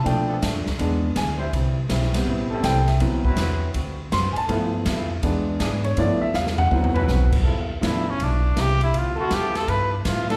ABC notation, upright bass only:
X:1
M:4/4
L:1/8
Q:"Swing" 1/4=162
K:Gmix
V:1 name="Upright bass" clef=bass
B,,2 (3A,, F,, D,, E,,2 D,,2 | C,,2 B,,,2 A,,,2 C,,2 | D,,2 E,,2 D,,2 ^F,, z | G,,2 F,,2 E,,2 ^G,,2 |
G,, z E,,2 D,,2 B,,,2 | G,,,2 A,,,2 B,,,2 C,,2 | D,,2 E,,2 G,,2 A,,2 |]